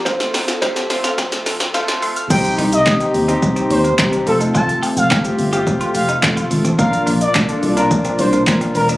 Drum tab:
CC |----------------|x---------------|----------------|----------------|
HH |-xox-xox-xox-xox|-xox-xox-xox-xox|-xox-xox-xox-xox|-xox-xox-xox-xox|
SH |xxxxxxxxxxxxxxxx|xxxxxxxxxxxxxxxx|xxxxxxxxxxxxxxxx|xxxxxxxxxxxxxxxx|
CP |----------------|----x-------x---|----x-------x---|----x-------x---|
SD |oooooooooooooo--|----o-------o---|----o-------o---|----o-------o---|
BD |o---o---o-------|o---o---o---o---|o---o---o---o---|o---o---o---o---|